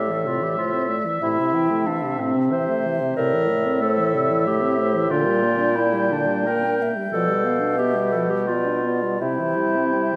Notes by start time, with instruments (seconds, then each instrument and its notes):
Already playing: bassoon A2, french horn A3, clarinet G4, flute D5, oboe E5
0.09 french horn E3, clarinet A4
0.25 french horn C3, clarinet F4
0.42 french horn E3, clarinet G4
0.57 french horn A3, clarinet F4, flute C5
0.73 french horn C4
0.89 french horn A3, flute D5
1.05 french horn E3
1.22 french horn A2, bassoon C3, clarinet E4, flute E5
1.39 french horn C3
1.54 french horn E3, flute G5
1.70 french horn A3
1.86 french horn E3, clarinet D4, flute F5
2.03 french horn C3
2.19 french horn A2, clarinet C4
2.35 french horn C3
2.52 french horn E3, clarinet C5, flute E5
2.69 french horn A3
2.86 french horn E3
3.01 french horn C3
3.16 bassoon A2, french horn C3, clarinet A#4, flute D5, oboe E5
3.34 french horn E3
3.49 french horn A3
3.66 french horn C4
3.81 french horn A3, clarinet A4, flute C5
3.99 french horn E3
4.15 french horn C3, flute D5
4.31 french horn E3
4.46 french horn A3, clarinet G4, flute E5
4.62 french horn C4
4.78 french horn A3, flute C5
4.95 french horn E3
5.10 bassoon A#2, french horn D3, clarinet F4, flute A#4, oboe G5
5.26 french horn G3
5.44 french horn A#3, flute D5
5.59 french horn D4
5.76 french horn A#3, clarinet E4
5.93 french horn G3
6.11 french horn D3, clarinet D4
6.28 french horn G3
6.46 french horn A#3, clarinet A#4, flute G5
6.64 french horn D4
6.80 french horn A#3, flute E5
6.96 french horn G3
7.12 bassoon B2, french horn F3, clarinet A4, flute D5
7.29 french horn G3
7.44 french horn B3, flute F5
7.60 french horn D4
7.77 french horn B3, clarinet G4, flute E5
7.95 french horn G3
8.12 french horn F3, clarinet A4
8.30 french horn G3, clarinet G4
8.47 french horn B3, clarinet F4, flute D5
8.67 french horn D4
8.84 french horn B3, flute D5
9.03 french horn G3
9.20 french horn C3, bassoon C3, clarinet E4, flute E5, oboe G5
9.39 french horn E3
9.57 french horn G3
9.76 french horn C4
9.94 french horn G3, flute E5
10.13 french horn E3